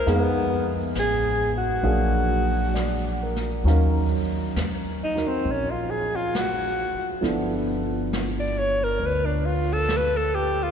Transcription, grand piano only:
0.06 1.85 G#3 soft
0.06 1.85 B3 soft
0.06 1.85 D#4 medium
0.06 1.83 G#4 medium
0.06 1.82 F5 soft
1.83 3.63 F#3 soft
1.83 3.66 A#3 soft
1.83 3.66 D4 soft
1.83 3.67 G#4 medium
1.83 3.66 F5 soft
2.74 3.47 D5 soft
3.23 3.69 A#4 soft
3.65 7.22 F#3 medium
3.65 7.22 C#4 soft
3.65 5.13 D#4 soft
3.65 7.24 F5 soft
3.70 5.16 A#4 medium
5.15 7.23 D#4 soft
5.15 7.23 F#4 soft
5.15 7.24 A#4 soft
7.21 10.71 F3 soft
7.21 10.71 B3 soft
7.21 10.71 D4 soft
7.21 10.71 E4 soft
7.21 10.71 A4 medium

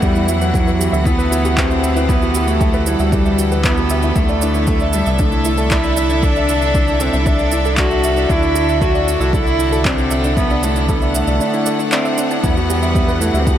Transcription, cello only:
0.01 0.29 G3 loud
0.27 1.06 F#3 loud
1.04 1.58 B3 loud
1.56 2.10 C4 loud
2.08 2.48 B3 loud
2.47 2.88 A3 loud
2.87 3.64 G3 loud
3.65 4.17 B3 loud
4.16 4.96 A3 loud
4.94 5.20 G3 medium
5.20 5.72 A3 loud
5.71 6.25 E4 loud
6.23 7.03 D4 loud
7.02 7.19 C4 loud
7.20 7.28 E4 medium
7.27 7.78 D4 loud
7.76 8.31 F#4 loud
8.30 8.82 E4 loud
8.81 9.34 F#4 loud
9.33 9.87 E4 loud
9.86 10.37 C4 loud
10.38 10.65 B3 loud
10.64 10.92 A3 medium
10.90 11.16 B3 medium
11.15 11.94 A3 loud
11.93 12.43 C4 loud
12.43 13.22 B3 loud
13.21 13.41 A3 loud
13.39 13.47 C4 medium
13.46 13.58 B3 loud

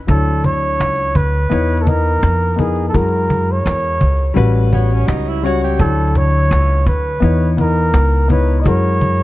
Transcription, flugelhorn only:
0.10 0.46 A4 medium
0.45 1.18 C#5 loud
1.16 1.83 B4 medium
1.82 1.89 A4 medium
1.88 2.61 A#4 medium
2.60 2.88 G#4 medium
2.89 2.97 A4 medium
2.96 3.53 A#4 medium
3.52 4.58 C#5 medium
5.80 6.18 A4 loud
6.17 6.87 C#5 loud
6.88 7.55 B4 loud
7.60 8.27 A#4 medium
8.31 8.62 B4 medium
8.61 8.69 D#5 medium
8.68 9.23 C#5 medium

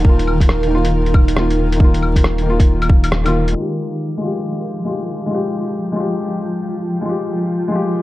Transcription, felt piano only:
0.00 0.67 D#3 medium
0.00 0.05 A#3 medium
0.00 0.09 F4 loud
0.05 0.69 A#3 medium
0.05 0.71 F4 medium
0.67 1.32 D#3 medium
0.67 1.34 A#3 medium
0.75 1.36 F4 loud
1.35 1.74 D#3 medium
1.35 1.79 A#3 medium
1.39 1.79 F4 medium
1.76 2.40 D#3 medium
1.80 2.44 A#3 medium
1.80 2.46 F4 loud
2.42 3.21 D#3 loud
2.42 3.23 A#3 medium
2.50 3.25 F4 loud
3.24 3.52 D#3 loud
3.24 3.54 A#3 medium
3.28 3.54 F4 loud
3.52 4.16 G#3 medium
3.56 4.19 F4 medium
3.60 4.21 G4 medium
4.17 4.83 G#3 medium
4.17 4.85 F4 medium
4.25 4.87 G4 medium
4.85 5.25 G#3 medium
4.85 5.29 F4 medium
4.89 5.30 G4 medium
5.26 5.90 G#3 medium
5.30 5.94 F4 medium
5.30 5.96 G4 medium
5.92 7.00 G#3 medium
5.92 7.04 F4 medium
6.00 7.06 G4 medium
7.01 7.66 G#3 medium
7.01 7.69 F4 medium
7.09 7.71 G4 medium
7.68 8.02 G#3 medium
7.68 8.02 F4 medium
7.75 8.02 G4 medium

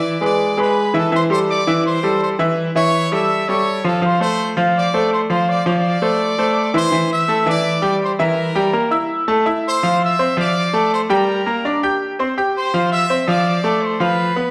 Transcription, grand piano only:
0.00 0.15 E3 medium
0.00 0.15 E4 medium
0.00 0.15 E5 medium
0.21 0.51 G#3 medium
0.21 0.51 G#4 medium
0.21 0.51 B4 medium
0.57 0.87 G#3 medium
0.57 0.88 G#4 medium
0.57 0.88 B4 medium
0.94 1.09 E3 medium
0.94 1.09 E4 medium
0.94 1.09 E5 medium
1.12 1.27 E3 medium
1.12 1.27 E4 medium
1.12 1.27 E5 medium
1.30 1.60 G3 medium
1.30 1.60 G4 medium
1.30 1.60 A4 medium
1.67 1.97 E3 medium
1.67 1.97 E4 medium
1.67 1.97 E5 medium
2.03 2.33 G3 medium
2.03 2.33 G4 medium
2.03 2.33 A4 medium
2.39 2.69 E3 medium
2.39 2.69 E4 medium
2.39 2.69 E5 medium
2.75 3.05 E3 medium
2.75 3.06 E4 medium
2.75 3.06 E5 medium
3.12 3.42 G3 medium
3.12 3.42 G4 medium
3.12 3.42 A4 medium
3.49 3.78 G3 medium
3.49 3.79 G4 medium
3.49 3.79 A4 medium
3.84 3.99 F3 medium
3.84 3.99 F4 medium
3.84 4.00 F5 medium
4.02 4.17 F3 medium
4.02 4.17 F4 medium
4.02 4.17 F5 medium
4.20 4.50 A3 medium
4.20 4.50 A4 medium
4.20 4.51 C5 medium
4.57 4.87 F3 medium
4.57 4.87 F4 medium
4.57 4.87 F5 medium
4.94 5.23 A3 medium
4.94 5.23 A4 medium
4.94 5.24 C5 medium
5.30 5.59 F3 medium
5.30 5.60 F4 medium
5.30 5.60 F5 medium
5.66 5.96 F3 medium
5.66 5.96 F4 medium
5.66 5.96 F5 medium
6.02 6.32 A3 medium
6.02 6.32 A4 medium
6.02 6.32 C5 medium
6.38 6.68 A3 medium
6.38 6.68 A4 medium
6.38 6.69 C5 medium
6.74 6.89 E3 medium
6.74 6.89 E4 medium
6.74 6.89 E5 medium
6.92 7.22 E3 medium
6.92 7.22 E4 medium
6.92 7.22 E5 medium
7.28 7.43 A3 medium
7.28 7.44 A4 medium
7.28 7.44 A5 medium
7.46 7.76 E3 medium
7.46 7.77 E4 medium
7.46 7.77 E5 medium
7.82 8.12 G3 medium
7.82 8.13 G4 medium
7.82 8.13 G5 medium
8.19 8.49 E3 medium
8.19 8.49 E4 medium
8.19 8.49 E5 loud
8.55 8.71 G3 medium
8.55 8.70 G4 medium
8.55 8.71 G5 medium
8.73 8.88 A#3 medium
8.73 8.89 A#4 medium
8.73 8.89 A#5 medium
8.91 9.21 E4 medium
8.91 9.22 E5 medium
8.91 9.22 E6 medium
9.28 9.43 A3 medium
9.28 9.43 A4 medium
9.28 9.43 A5 medium
9.46 9.76 E4 medium
9.46 9.76 E5 medium
9.46 9.76 E6 medium
9.83 10.13 F3 medium
9.83 10.13 F4 medium
9.83 10.13 F5 medium
10.19 10.34 C4 medium
10.19 10.34 C5 medium
10.19 10.34 C6 medium
10.37 10.67 F3 medium
10.37 10.67 F4 loud
10.37 10.67 F5 medium
10.73 11.03 A3 medium
10.73 11.03 A4 medium
10.73 11.04 A5 medium
11.10 11.40 G3 medium
11.10 11.40 G4 medium
11.10 11.40 G5 loud
11.46 11.61 A#3 medium
11.46 11.61 A#4 medium
11.46 11.62 A#5 medium
11.65 11.80 D4 medium
11.65 11.80 D5 medium
11.65 11.80 D6 medium
11.83 12.13 G4 medium
11.83 12.13 G5 medium
11.83 12.13 G6 medium
12.19 12.34 C4 medium
12.19 12.34 C5 medium
12.19 12.34 C6 medium
12.38 12.67 G4 medium
12.38 12.67 G5 medium
12.38 12.68 G6 medium
12.74 13.03 F3 medium
12.74 13.04 F4 medium
12.74 13.04 F5 medium
13.10 13.25 C4 medium
13.10 13.25 C5 medium
13.10 13.25 C6 medium
13.28 13.58 F3 loud
13.28 13.58 F4 medium
13.28 13.58 F5 medium
13.64 13.94 A3 medium
13.64 13.94 A4 medium
13.64 13.94 A5 medium
14.00 14.30 F3 medium
14.00 14.30 F4 medium
14.00 14.30 F5 medium
14.36 14.51 B3 medium
14.36 14.51 B4 medium
14.36 14.51 B5 medium

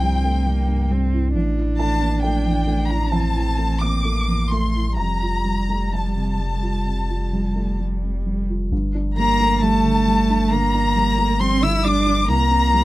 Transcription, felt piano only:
0.00 0.68 G2 medium
0.00 0.03 G3 soft
0.00 0.38 G3 soft
0.00 0.24 A3 soft
0.00 1.13 E4 medium
0.00 0.87 G5 medium
0.00 1.37 A5 medium
0.00 1.37 A#5 medium
0.00 1.37 C6 medium
0.24 0.47 A3 soft
0.46 0.82 G3 medium
0.68 1.03 G2 soft
0.90 1.26 G3 soft
1.13 1.35 E4 medium
1.36 3.08 A1 medium
1.57 1.92 E4 medium
1.79 2.14 A3 medium
1.79 2.20 A5 medium
2.01 2.23 A#3 soft
2.23 2.58 A3 medium
2.23 2.85 G5 medium
2.46 2.81 E2 soft
2.67 3.02 A3 medium
2.89 3.26 E4 soft
2.89 3.11 A#5 medium
3.12 3.49 E2 medium
3.12 3.78 A5 medium
3.35 3.72 E4 medium
3.58 3.95 A3 soft
3.81 4.05 A#3 soft
3.81 4.47 D6 medium
4.05 4.42 A4 soft
4.28 4.65 E2 soft
4.51 4.89 A3 soft
4.51 4.95 C6 soft
4.75 4.98 E4 soft
4.97 6.82 F2 soft
4.97 5.88 A#5 medium
5.22 5.60 F4 soft
5.45 5.83 G3 soft
5.69 5.93 A3 soft
5.92 6.30 G3 soft
5.92 7.75 A5 soft
6.16 6.53 C3 soft
6.40 6.77 G3 soft
6.62 7.00 F4 soft
6.86 7.23 C3 soft
7.09 7.46 F4 soft
7.33 7.70 G3 soft
7.56 7.79 A3 soft
7.80 8.16 G3 soft
8.02 8.39 C3 soft
8.27 8.63 G3 soft
8.49 8.72 F4 soft
8.72 10.48 G2 medium
8.95 9.31 D4 medium
9.17 9.53 G3 medium
9.40 9.62 A3 soft
9.63 9.98 G3 medium
9.85 10.20 D3 medium
10.07 10.43 G3 medium
10.30 10.65 D4 medium
10.52 10.87 D3 medium
10.74 11.10 D4 soft
10.96 11.32 G3 medium
11.18 11.40 A3 soft
11.40 11.76 G3 medium
11.62 11.98 D3 soft
11.85 12.20 G3 medium
12.06 12.29 D4 medium
12.29 12.84 C2 medium
12.51 12.84 C4 medium
12.74 12.84 G3 soft

